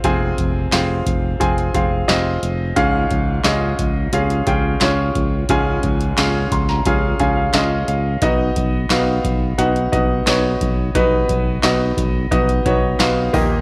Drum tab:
HH |x-x-x-x-xxx-x-x-|x-x-x-x-xxx-x-x-|x-xxx-x-x-x-x-x-|x-x-x-x-xxx-x-x-|
CP |----x-------x---|----x-------x---|----x-------x---|----x-------x---|
SD |----o-------o---|----o-------o---|----o--o----o---|----o-------o---|
BD |o-o---o-o-o-----|o-o---o---o---o-|o-o---o-o-o-----|o-o---o---o---o-|

HH |x-x-x-x-xxx-x-o-|
CP |----x-------x---|
SD |----o-------o---|
BD |o-o---o-o-o---o-|